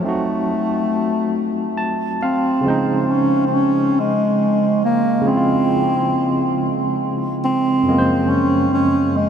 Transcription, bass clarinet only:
0, 0, Header, 1, 2, 480
1, 0, Start_track
1, 0, Tempo, 869565
1, 22, Time_signature, 6, 3, 24, 8
1, 5129, End_track
2, 0, Start_track
2, 0, Title_t, "Bass clarinet"
2, 0, Program_c, 0, 71
2, 31, Note_on_c, 0, 57, 85
2, 986, Note_off_c, 0, 57, 0
2, 1232, Note_on_c, 0, 60, 88
2, 1672, Note_off_c, 0, 60, 0
2, 1672, Note_on_c, 0, 60, 70
2, 1716, Note_on_c, 0, 61, 92
2, 1724, Note_off_c, 0, 60, 0
2, 1910, Note_off_c, 0, 61, 0
2, 1915, Note_on_c, 0, 60, 73
2, 1957, Note_on_c, 0, 61, 100
2, 1965, Note_off_c, 0, 60, 0
2, 2204, Note_on_c, 0, 56, 91
2, 2213, Note_off_c, 0, 61, 0
2, 2673, Note_off_c, 0, 56, 0
2, 2676, Note_on_c, 0, 58, 89
2, 2913, Note_on_c, 0, 60, 101
2, 2921, Note_off_c, 0, 58, 0
2, 3867, Note_off_c, 0, 60, 0
2, 4110, Note_on_c, 0, 60, 105
2, 4578, Note_on_c, 0, 61, 93
2, 4587, Note_off_c, 0, 60, 0
2, 4816, Note_off_c, 0, 61, 0
2, 4820, Note_on_c, 0, 61, 106
2, 5059, Note_on_c, 0, 56, 94
2, 5067, Note_off_c, 0, 61, 0
2, 5129, Note_off_c, 0, 56, 0
2, 5129, End_track
0, 0, End_of_file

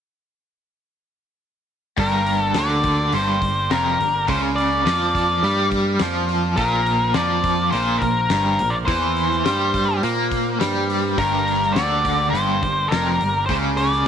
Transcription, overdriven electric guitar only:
0, 0, Header, 1, 2, 480
1, 0, Start_track
1, 0, Tempo, 575264
1, 1652, Time_signature, 4, 2, 24, 8
1, 11747, End_track
2, 0, Start_track
2, 0, Title_t, "Overdriven electric guitar"
2, 0, Program_c, 0, 29
2, 1651, Note_on_c, 0, 43, 91
2, 2124, Note_off_c, 0, 43, 0
2, 2140, Note_on_c, 0, 50, 87
2, 2609, Note_off_c, 0, 50, 0
2, 2616, Note_on_c, 0, 43, 103
2, 2845, Note_off_c, 0, 43, 0
2, 2855, Note_on_c, 0, 43, 70
2, 3046, Note_off_c, 0, 43, 0
2, 3097, Note_on_c, 0, 41, 101
2, 3328, Note_off_c, 0, 41, 0
2, 3344, Note_on_c, 0, 43, 68
2, 3530, Note_off_c, 0, 43, 0
2, 3578, Note_on_c, 0, 49, 89
2, 4048, Note_off_c, 0, 49, 0
2, 4057, Note_on_c, 0, 53, 96
2, 4527, Note_off_c, 0, 53, 0
2, 4540, Note_on_c, 0, 55, 101
2, 5008, Note_off_c, 0, 55, 0
2, 5024, Note_on_c, 0, 53, 112
2, 5490, Note_off_c, 0, 53, 0
2, 5494, Note_on_c, 0, 46, 92
2, 5964, Note_off_c, 0, 46, 0
2, 5967, Note_on_c, 0, 53, 91
2, 6442, Note_off_c, 0, 53, 0
2, 6455, Note_on_c, 0, 46, 99
2, 6685, Note_off_c, 0, 46, 0
2, 6700, Note_on_c, 0, 46, 65
2, 6887, Note_off_c, 0, 46, 0
2, 6935, Note_on_c, 0, 43, 103
2, 7165, Note_off_c, 0, 43, 0
2, 7172, Note_on_c, 0, 46, 73
2, 7363, Note_off_c, 0, 46, 0
2, 7408, Note_on_c, 0, 52, 84
2, 7882, Note_off_c, 0, 52, 0
2, 7887, Note_on_c, 0, 55, 94
2, 8362, Note_off_c, 0, 55, 0
2, 8378, Note_on_c, 0, 58, 87
2, 8844, Note_off_c, 0, 58, 0
2, 8847, Note_on_c, 0, 55, 101
2, 9322, Note_off_c, 0, 55, 0
2, 9330, Note_on_c, 0, 43, 96
2, 9804, Note_off_c, 0, 43, 0
2, 9824, Note_on_c, 0, 50, 91
2, 10285, Note_on_c, 0, 43, 100
2, 10291, Note_off_c, 0, 50, 0
2, 10522, Note_off_c, 0, 43, 0
2, 10544, Note_on_c, 0, 43, 73
2, 10730, Note_off_c, 0, 43, 0
2, 10787, Note_on_c, 0, 41, 94
2, 11013, Note_off_c, 0, 41, 0
2, 11036, Note_on_c, 0, 43, 64
2, 11217, Note_off_c, 0, 43, 0
2, 11269, Note_on_c, 0, 49, 90
2, 11735, Note_off_c, 0, 49, 0
2, 11747, End_track
0, 0, End_of_file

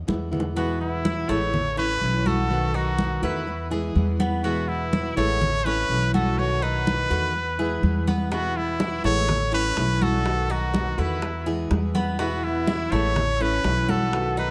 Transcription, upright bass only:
0, 0, Header, 1, 2, 480
1, 0, Start_track
1, 0, Key_signature, 4, "major"
1, 0, Tempo, 484653
1, 560, Time_signature, 4, 2, 24, 8
1, 14368, End_track
2, 0, Start_track
2, 0, Title_t, "Upright bass"
2, 0, Program_c, 0, 32
2, 79, Note_on_c, 0, 40, 88
2, 1216, Note_off_c, 0, 40, 0
2, 1273, Note_on_c, 0, 33, 93
2, 1957, Note_off_c, 0, 33, 0
2, 1993, Note_on_c, 0, 35, 92
2, 3132, Note_off_c, 0, 35, 0
2, 3195, Note_on_c, 0, 40, 94
2, 3877, Note_off_c, 0, 40, 0
2, 3916, Note_on_c, 0, 40, 91
2, 5053, Note_off_c, 0, 40, 0
2, 5116, Note_on_c, 0, 33, 88
2, 5797, Note_off_c, 0, 33, 0
2, 5835, Note_on_c, 0, 35, 91
2, 6972, Note_off_c, 0, 35, 0
2, 7033, Note_on_c, 0, 40, 90
2, 7716, Note_off_c, 0, 40, 0
2, 7754, Note_on_c, 0, 40, 88
2, 8892, Note_off_c, 0, 40, 0
2, 8954, Note_on_c, 0, 33, 88
2, 9636, Note_off_c, 0, 33, 0
2, 9675, Note_on_c, 0, 35, 96
2, 10812, Note_off_c, 0, 35, 0
2, 10873, Note_on_c, 0, 40, 96
2, 11556, Note_off_c, 0, 40, 0
2, 11594, Note_on_c, 0, 40, 94
2, 12732, Note_off_c, 0, 40, 0
2, 12793, Note_on_c, 0, 33, 98
2, 13476, Note_off_c, 0, 33, 0
2, 13511, Note_on_c, 0, 35, 87
2, 14368, Note_off_c, 0, 35, 0
2, 14368, End_track
0, 0, End_of_file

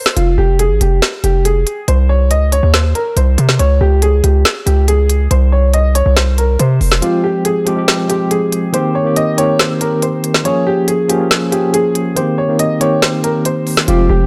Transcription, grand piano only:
0, 0, Header, 1, 2, 480
1, 0, Start_track
1, 0, Tempo, 428571
1, 186, Time_signature, 4, 2, 24, 8
1, 15977, End_track
2, 0, Start_track
2, 0, Title_t, "Grand piano"
2, 0, Program_c, 0, 0
2, 0, Note_on_c, 0, 72, 84
2, 158, Note_off_c, 0, 72, 0
2, 184, Note_on_c, 0, 65, 90
2, 395, Note_off_c, 0, 65, 0
2, 425, Note_on_c, 0, 67, 85
2, 635, Note_off_c, 0, 67, 0
2, 664, Note_on_c, 0, 68, 84
2, 875, Note_off_c, 0, 68, 0
2, 905, Note_on_c, 0, 67, 72
2, 1116, Note_off_c, 0, 67, 0
2, 1387, Note_on_c, 0, 67, 81
2, 1596, Note_off_c, 0, 67, 0
2, 1625, Note_on_c, 0, 68, 83
2, 2077, Note_off_c, 0, 68, 0
2, 2104, Note_on_c, 0, 72, 85
2, 2315, Note_off_c, 0, 72, 0
2, 2344, Note_on_c, 0, 73, 86
2, 2555, Note_off_c, 0, 73, 0
2, 2585, Note_on_c, 0, 75, 85
2, 2795, Note_off_c, 0, 75, 0
2, 2825, Note_on_c, 0, 73, 92
2, 3036, Note_off_c, 0, 73, 0
2, 3064, Note_on_c, 0, 72, 86
2, 3275, Note_off_c, 0, 72, 0
2, 3305, Note_on_c, 0, 70, 81
2, 3515, Note_off_c, 0, 70, 0
2, 3546, Note_on_c, 0, 72, 82
2, 3997, Note_off_c, 0, 72, 0
2, 4024, Note_on_c, 0, 73, 96
2, 4235, Note_off_c, 0, 73, 0
2, 4266, Note_on_c, 0, 67, 86
2, 4476, Note_off_c, 0, 67, 0
2, 4506, Note_on_c, 0, 68, 84
2, 4716, Note_off_c, 0, 68, 0
2, 4744, Note_on_c, 0, 67, 69
2, 4955, Note_off_c, 0, 67, 0
2, 5221, Note_on_c, 0, 67, 79
2, 5433, Note_off_c, 0, 67, 0
2, 5467, Note_on_c, 0, 68, 86
2, 5917, Note_off_c, 0, 68, 0
2, 5943, Note_on_c, 0, 72, 79
2, 6154, Note_off_c, 0, 72, 0
2, 6186, Note_on_c, 0, 73, 78
2, 6396, Note_off_c, 0, 73, 0
2, 6427, Note_on_c, 0, 75, 78
2, 6636, Note_off_c, 0, 75, 0
2, 6666, Note_on_c, 0, 73, 85
2, 6876, Note_off_c, 0, 73, 0
2, 6906, Note_on_c, 0, 72, 83
2, 7116, Note_off_c, 0, 72, 0
2, 7146, Note_on_c, 0, 70, 81
2, 7356, Note_off_c, 0, 70, 0
2, 7388, Note_on_c, 0, 72, 82
2, 7838, Note_off_c, 0, 72, 0
2, 7864, Note_on_c, 0, 65, 87
2, 8075, Note_off_c, 0, 65, 0
2, 8105, Note_on_c, 0, 67, 81
2, 8316, Note_off_c, 0, 67, 0
2, 8345, Note_on_c, 0, 68, 88
2, 8555, Note_off_c, 0, 68, 0
2, 8585, Note_on_c, 0, 67, 69
2, 8795, Note_off_c, 0, 67, 0
2, 9067, Note_on_c, 0, 67, 81
2, 9276, Note_off_c, 0, 67, 0
2, 9306, Note_on_c, 0, 68, 81
2, 9757, Note_off_c, 0, 68, 0
2, 9785, Note_on_c, 0, 72, 83
2, 9995, Note_off_c, 0, 72, 0
2, 10024, Note_on_c, 0, 73, 85
2, 10235, Note_off_c, 0, 73, 0
2, 10265, Note_on_c, 0, 75, 85
2, 10476, Note_off_c, 0, 75, 0
2, 10507, Note_on_c, 0, 73, 92
2, 10716, Note_off_c, 0, 73, 0
2, 10745, Note_on_c, 0, 72, 87
2, 10955, Note_off_c, 0, 72, 0
2, 10986, Note_on_c, 0, 70, 81
2, 11196, Note_off_c, 0, 70, 0
2, 11227, Note_on_c, 0, 72, 79
2, 11678, Note_off_c, 0, 72, 0
2, 11705, Note_on_c, 0, 73, 94
2, 11915, Note_off_c, 0, 73, 0
2, 11947, Note_on_c, 0, 67, 89
2, 12156, Note_off_c, 0, 67, 0
2, 12187, Note_on_c, 0, 68, 85
2, 12396, Note_off_c, 0, 68, 0
2, 12425, Note_on_c, 0, 67, 71
2, 12635, Note_off_c, 0, 67, 0
2, 12902, Note_on_c, 0, 67, 80
2, 13113, Note_off_c, 0, 67, 0
2, 13147, Note_on_c, 0, 68, 90
2, 13597, Note_off_c, 0, 68, 0
2, 13623, Note_on_c, 0, 72, 79
2, 13834, Note_off_c, 0, 72, 0
2, 13866, Note_on_c, 0, 73, 77
2, 14076, Note_off_c, 0, 73, 0
2, 14107, Note_on_c, 0, 75, 81
2, 14316, Note_off_c, 0, 75, 0
2, 14346, Note_on_c, 0, 73, 86
2, 14556, Note_off_c, 0, 73, 0
2, 14586, Note_on_c, 0, 72, 79
2, 14796, Note_off_c, 0, 72, 0
2, 14826, Note_on_c, 0, 70, 79
2, 15036, Note_off_c, 0, 70, 0
2, 15068, Note_on_c, 0, 72, 82
2, 15518, Note_off_c, 0, 72, 0
2, 15544, Note_on_c, 0, 65, 88
2, 15755, Note_off_c, 0, 65, 0
2, 15785, Note_on_c, 0, 67, 85
2, 15977, Note_off_c, 0, 67, 0
2, 15977, End_track
0, 0, End_of_file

